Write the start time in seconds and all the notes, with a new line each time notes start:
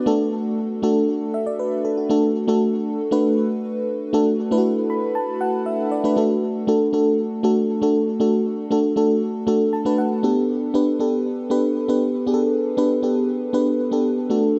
0.06 A3 D4 F#4 A4
0.82 A3 D4 F#4 A4
1.34 E5
1.47 D5
1.59 B4
1.85 A4
1.97 F#4
2.09 A3 D4 F#4 A4
2.48 A3 D4 F#4 A4
3.11 A3 D4 F#4 B4
4.13 A3 D4 F#4 A4
4.51 A3 D4 E4 B4
4.58 F#4
4.90 B5
5.15 A5
5.41 F#5
5.66 E5
5.92 D5
6.04 A3 D4 F#4 B4
6.16 A3 D4 F#4 A4
6.67 A3 D4 F#4 A4
6.93 A3 D4 F#4 A4
7.43 A3 D4 F#4 A4
7.82 A3 D4 F#4 A4
8.20 A3 D4 F#4 A4
8.71 A3 D4 F#4 A4
8.96 A3 D4 F#4 A4
9.47 A3 D4 F#4 A4
9.73 A5
9.85 A3 D4 F#4 B4
9.98 F#5
10.23 B3 D4 G4 A4
10.74 B3 D4 G4 B4
11.00 B3 D4 G4 A4
11.50 B3 D4 G4 B4
11.88 B3 D4 G4 B4
12.27 B3 D4 G4 G#4
12.34 A4
12.77 B3 D4 G4 B4
13.03 B3 D4 G4 A4
13.53 B3 D4 G4 B4
13.91 B3 D4 G4 A4
14.30 A3 D4 F#4 A4